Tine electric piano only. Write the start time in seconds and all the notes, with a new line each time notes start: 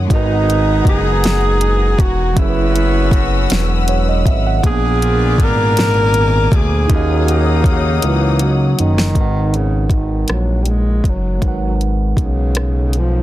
Already playing: C#5
0.08 G#3 D#4
0.12 F#4 A#4 B4
2.34 F#3 C#4
2.38 E4 G#4
2.42 A#4
2.49 B4
3.89 C#5
4.09 D#5
4.27 E5
4.47 F#5
4.61 A#2 A#3
4.66 D4 G#4
4.70 B3
6.87 A#3 C#4 D#4
6.93 F#4 D#5
9.13 G#3 D#4 A#4
9.19 B4 F#5
11.39 G#3 D#4
11.43 A#4 B4
11.48 F#5